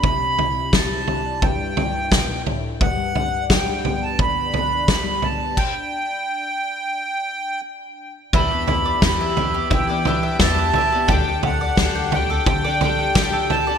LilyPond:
<<
  \new Staff \with { instrumentName = "Accordion" } { \time 4/4 \key e \minor \tempo 4 = 87 b''4 a''4 g''4. r8 | fis''4 g''8. a''16 b''4. a''8 | g''2. r4 | b''4 b''4 g''4 a''4 |
g''8 fis''4 g''2 a''8 | }
  \new Staff \with { instrumentName = "Mandolin" } { \time 4/4 \key e \minor r1 | r1 | r1 | e'8 e'16 d''16 e'16 e''16 e'16 g'16 e'16 d''16 e'16 e''16 e'16 g'16 e'16 d''16 |
g'8 g'16 d''16 g'16 g''16 g'16 a'16 g'16 d''16 g'16 g''16 g'16 a'16 g'16 d''16 | }
  \new Staff \with { instrumentName = "Twelve-string acoustic guitar" } { \time 4/4 \key e \minor r1 | r1 | r1 | <e g b d' g'>16 <b d' g'>8. <e g b d' g'>8 <g b d' g'>16 <b d' g'>8 <b d' g'>16 <g b d' g'>8 <e g b d' g'>8 <g b d' g'>16 <b d' g'>16 |
<d g d' g' a'>16 <d' g' a'>8. <d g d' g' a'>8 <g d' g' a'>16 <d' g' a'>8 <d' g' a'>16 <g d' g' a'>8 <d g d' g' a'>8 <g d' g' a'>16 <d' g' a'>16 | }
  \new Staff \with { instrumentName = "Steel-string acoustic guitar" } { \clef bass \time 4/4 \key e \minor << { d'8 e'4 d'4 e'4. | r8 d'4 b4 d'4 b8 | r1 | r1 |
r1 | } \\ { c4 g4 g,4 b,8 a,8 | g,4 g4 d4 g4 | r1 | r1 |
r1 | } >> }
  \new Staff \with { instrumentName = "Upright bass" } { \clef bass \time 4/4 \key e \minor r1 | r1 | r1 | e,4 e,4 e4 e,8 r8 |
d,4 d,4 d4 d8 r8 | }
  \new DrumStaff \with { instrumentName = "Drums" } \drummode { \time 4/4 <bd tomfh>8 tomfh8 <bd sn tomfh>8 tomfh8 <bd tomfh>8 tomfh8 <bd sn tomfh>8 tomfh8 | <bd tomfh>8 tomfh8 <bd sn tomfh>8 tomfh8 <bd tomfh>8 tomfh8 <bd sn tomfh>8 tomfh8 | <cymc bd>4 r4 r4 r4 | <bd tomfh>8 tomfh8 <bd sn tomfh>8 tomfh8 <bd tomfh>8 tomfh8 <bd sn tomfh>8 tomfh8 |
<bd tomfh>8 tomfh8 <bd sn tomfh>8 tomfh8 <bd tomfh>8 tomfh8 <bd sn tomfh>8 tomfh8 | }
>>